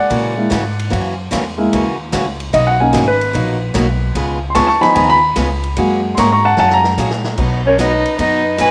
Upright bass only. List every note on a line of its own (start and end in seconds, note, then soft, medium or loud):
0.11 0.50 A#2 medium
0.51 0.90 G#2 medium
0.92 1.31 F#2 medium
1.32 1.71 E2 medium
1.73 2.12 D#2 medium
2.13 2.52 C#2 medium
2.54 2.93 B1 medium
2.94 3.33 G#1 medium
3.35 3.74 A#1 medium
3.75 4.14 B1 medium
4.15 4.54 C#2 medium
4.56 4.95 D2 medium
4.96 5.35 D#2 medium
5.36 5.75 C#2 medium
5.77 6.16 F#2 medium
6.18 6.56 G#2 medium
6.57 6.96 F#2 medium
6.98 7.37 A#2 medium
7.38 8.03 B1 medium
8.19 8.71 F#2 medium